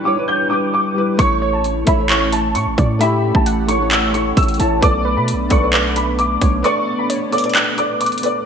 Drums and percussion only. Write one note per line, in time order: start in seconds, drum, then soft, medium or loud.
1.19 kick loud
1.19 closed hi-hat medium
1.64 closed hi-hat medium
1.87 kick loud
1.87 closed hi-hat medium
2.09 clap loud
2.09 closed hi-hat medium
2.32 closed hi-hat medium
2.55 closed hi-hat medium
2.78 kick loud
2.78 closed hi-hat medium
3.01 closed hi-hat medium
3.35 kick medium
3.46 closed hi-hat medium
3.69 closed hi-hat medium
3.91 clap loud
3.91 closed hi-hat medium
4.14 closed hi-hat medium
4.37 kick loud
4.37 closed hi-hat medium
4.43 closed hi-hat medium
4.48 closed hi-hat medium
4.54 closed hi-hat soft
4.60 closed hi-hat medium
4.82 kick loud
4.82 closed hi-hat medium
5.28 closed hi-hat loud
5.50 kick loud
5.50 closed hi-hat medium
5.73 clap loud
5.73 closed hi-hat medium
5.96 closed hi-hat medium
6.19 closed hi-hat medium
6.41 kick loud
6.41 closed hi-hat medium
6.64 closed hi-hat medium
7.10 closed hi-hat medium
7.33 closed hi-hat medium
7.38 closed hi-hat medium
7.44 closed hi-hat medium
7.50 closed hi-hat soft
7.55 clap loud
7.55 closed hi-hat medium
7.78 closed hi-hat medium
8.01 closed hi-hat medium
8.06 closed hi-hat medium
8.12 closed hi-hat medium
8.18 closed hi-hat medium
8.23 closed hi-hat medium